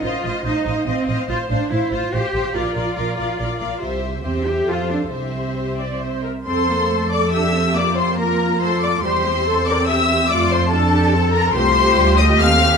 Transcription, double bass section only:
X:1
M:3/4
L:1/8
Q:1/4=142
K:Fphr
V:1 name="Double bass section" clef=bass
=A,,, A,,, A,,, A,,, A,,, A,,, | [K:F] A,,, A,,, A,,, A,,, A,,, A,,, | B,,, B,,, B,,, B,,, B,,, B,,, | C,,2 E,,2 F,,2 |
C,,4- C,, z | F,,6- | F,,6 | E,,6 |
F,,6 | [K:Fmix] C,,2 D,,2 E,,2 |]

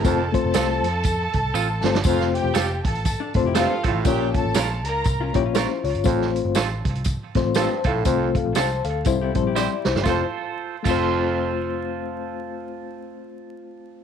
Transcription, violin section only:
X:1
M:4/4
L:1/16
Q:"Swing" 1/4=120
K:F
V:1 name="Violin section"
[Aa]16 | [Ff]2 [Gg]4 [Aa]4 z2 [Ff]3 z | [Gg]2 [Aa]4 [Bb]4 z6 | z16 |
z16 | z16 | z16 |]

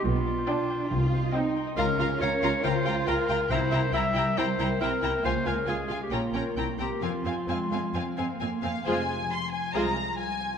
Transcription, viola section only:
X:1
M:4/4
L:1/8
Q:1/4=137
K:Fm
V:1 name="Viola section"
z2 =D2 z2 C2 | F F F F F F F F | =E E E E E E E E | F F F F D D C C |
C C C C C C C C | [A,F] z3 [A,F] z3 |]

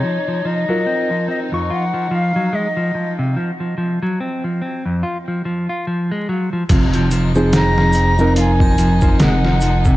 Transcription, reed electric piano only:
X:1
M:4/4
L:1/16
Q:"Swing 16ths" 1/4=72
K:Fphr
V:1 name="Reed electric piano"
z3 [FB]4 [F,d']8- [F,d'] | z16 | z3 [F,CEA]4 [F,CEB]8- [F,CEB] |]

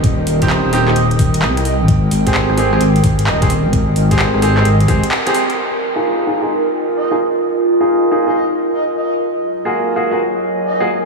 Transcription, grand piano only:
X:1
M:4/4
L:1/16
Q:"Swing 16ths" 1/4=130
K:Fm
V:1 name="Grand piano"
z3 [CEG]3 [CEG] [CEG] z8 | z3 [CGA]3 [CGA] [CGA] z4 z [CGA] z2 | z3 [CGA]3 [CGA] [CGA] z2 [CGA] z2 [CGA] z2 | z3 [EFA]3 [EFA] [EFA] z4 z [EFA] z2 |
z3 [EFA]3 [EFA] [EFA] z8 | z3 [B,F_GA]3 [B,FGA] [B,FGA] z4 z [B,FGA] z2 |]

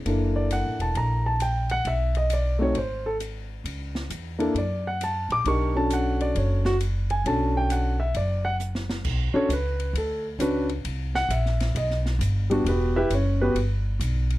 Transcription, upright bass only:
X:1
M:4/4
L:1/8
Q:"Swing" 1/4=133
K:Bm
V:1 name="Upright bass" clef=bass
F,,,2- (3F,,, A,,, E,,, ^A,,,4 | B,,,4 ^G,,,4 | C,,2 E,,2 F,,3 ^A,,, | B,,,4 F,,,4 |
B,,,4 F,,,4 | B,,, z C,,2 D,,2 C,,2 | ^B,,,2 ^A,,,2 =B,,,2 G,,,2 | E,,,2 F,,,2 G,,,2 B,,,2 |]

